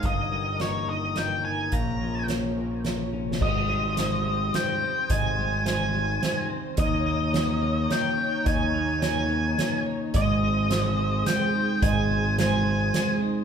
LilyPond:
<<
  \new Staff \with { instrumentName = "Lead electric guitar" } { \time 3/4 \key aes \major \tempo 4 = 107 ees''4 des''8 ees''8 g''8 aes''8 | bes''4 r2 | ees''2 g''4 | aes''4 aes''4. r8 |
ees''2 g''4 | aes''4 aes''4. r8 | ees''2 g''4 | aes''4 aes''4. r8 | }
  \new Staff \with { instrumentName = "Felt piano" } { \time 3/4 \key aes \major f''4 ees''4 ees''4 | f''4 des''4 des''4 | ees''4 c''4 c''4 | ees''4 c''4 c''4 |
ees''4 des''4 des''4 | ees''4 des''4 des''4 | ees''4 c''4 c''4 | ees''4 c''4 c''4 | }
  \new Staff \with { instrumentName = "String section" } { \time 3/4 \key aes \major << { bes'2.~ | bes'2. | c''2.~ | c''2. |
des''2.~ | des''2. | c''2.~ | c''2. | } \\ { <g ees'>2. | <f des'>2. | g2.~ | g2. |
ees'2.~ | ees'2. | aes'2.~ | aes'2. | } >> }
  \new Staff \with { instrumentName = "Clean electric guitar" } { \clef bass \time 3/4 \key aes \major g,8 g8 bes8 ees8 g8 ees'8 | bes,8 f8 bes8 bes,8 f8 des'8 | aes,8 g8 ees8 g8 ees8 c'8 | aes,8 g8 ees8 g8 ees8 c'8 |
ees8 bes8 ees8 bes8 ees8 des'8 | ees8 bes8 ees8 bes8 ees8 des'8 | aes8 c'8 aes8 c'8 aes8 ees'8 | aes8 c'8 aes8 c'8 aes8 ees'8 | }
  \new Staff \with { instrumentName = "Fingered electric bass" } { \clef bass \time 3/4 \key aes \major g,,2. | bes,,2. | aes,,2 r4 | aes,,2 r4 |
ees,2 r4 | ees,2 r4 | aes,,2 r4 | aes,,2 r4 | }
  \new DrumStaff \with { instrumentName = "Drums" } \drummode { \time 3/4 <hh bd>4 <hh sn>4 <hh sn>4 | <hh bd>4 <hh sn>4 \tuplet 3/2 { <hh sn>16 r16 r16 tommh16 r16 sn16 } | <cymc bd>4 <hh sn>4 <hh sn>4 | <hh bd>4 <hh sn>4 <hh sn>4 |
<hh bd>4 <hh sn>4 <hh sn>4 | <hh bd>4 <hh sn>4 <hh sn>4 | <hh bd>4 <hh sn>4 <hh sn>4 | <hh bd>4 <hh sn>4 <hh sn>4 | }
>>